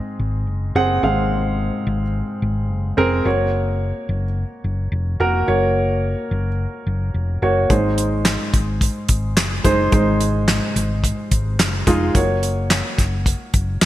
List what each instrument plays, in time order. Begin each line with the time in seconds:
Already playing: grand piano G#2 C4 G#4 D#5
0.19 fingered electric bass G#1
0.47 fingered electric bass F#1
0.75 fingered electric bass F#1, grand piano C4 G#4 F#5
1.03 fingered electric bass G#1, grand piano G#2 C4 G#4 F5
1.87 fingered electric bass G#1
2.42 fingered electric bass G#1
2.70 fingered electric bass F#1
2.97 fingered electric bass F1, grand piano C4 G#4 A#4
3.25 fingered electric bass F#1, grand piano A#3 F#4 C#5
4.09 fingered electric bass F#1
4.64 fingered electric bass F#1
4.92 fingered electric bass F1
5.20 fingered electric bass F1, grand piano A#3 F#4 A#4
5.47 fingered electric bass F#1, grand piano A#3 F#4 C#5
6.31 fingered electric bass F#1
6.87 fingered electric bass F#1
7.14 fingered electric bass F1
7.42 fingered electric bass F#1, grand piano A#3 F#4 C#5
7.70 fingered electric bass G#1, grand piano G#2 G#3 D#4 C5, kick, closed hi-hat
7.98 closed hi-hat
8.25 snare, clap, closed hi-hat
8.54 fingered electric bass G#1, kick, closed hi-hat
8.81 kick, closed hi-hat
9.09 fingered electric bass G#1, kick, closed hi-hat
9.37 fingered electric bass F#1, snare, clap, closed hi-hat
9.64 fingered electric bass F#1, grand piano G#3 D#4 C5, kick, closed hi-hat
9.92 fingered electric bass G#1, grand piano G#2 G#3 D#4 C5, kick, closed hi-hat
10.21 closed hi-hat
10.48 snare, clap, closed hi-hat
10.76 fingered electric bass G#1, closed hi-hat
11.04 kick, closed hi-hat
11.31 fingered electric bass G#1, kick, closed hi-hat
11.59 fingered electric bass F#1, snare, clap, closed hi-hat
11.87 fingered electric bass F1, grand piano G#3 D#4 F4, kick, closed hi-hat
12.14 fingered electric bass F#1, grand piano A#3 F#4 C#5, kick, closed hi-hat
12.43 closed hi-hat
12.70 snare, clap, closed hi-hat
12.98 fingered electric bass F#1, kick, snare, closed hi-hat
13.26 kick, closed hi-hat
13.54 fingered electric bass F#1, kick, closed hi-hat
13.82 fingered electric bass F1, snare, clap, closed hi-hat